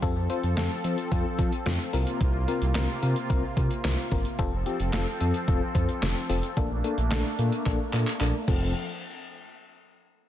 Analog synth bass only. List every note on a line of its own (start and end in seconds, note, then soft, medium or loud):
0.02 0.14 F2 loud
0.16 0.28 F2 loud
0.43 0.55 F2 loud
0.57 0.69 F2 loud
0.84 0.96 F3 loud
1.12 1.23 F2 loud
1.39 1.50 F3 loud
1.66 1.78 F2 loud
1.94 2.05 C2 loud
2.21 2.32 C2 loud
2.35 2.46 C2 loud
2.62 2.73 C2 loud
2.76 2.87 C2 loud
3.03 3.14 C3 loud
3.30 3.41 C2 loud
3.57 3.69 C3 loud
3.85 3.96 C2 loud
4.12 4.23 G1 medium
4.39 4.50 F1 loud
4.53 4.64 F1 loud
4.80 4.91 F1 loud
4.94 5.05 F1 loud
5.21 5.32 F2 loud
5.48 5.60 F1 loud
5.75 5.87 F2 loud
6.02 6.14 F1 loud
6.30 6.41 F1 loud
6.57 6.69 A#1 loud
6.70 6.82 A#1 loud
6.98 7.09 A#1 loud
7.11 7.23 A#1 loud
7.39 7.50 A#2 medium
7.66 7.78 A#1 loud
7.93 8.05 A#2 loud
8.21 8.32 A#1 loud
8.48 8.73 F1 loud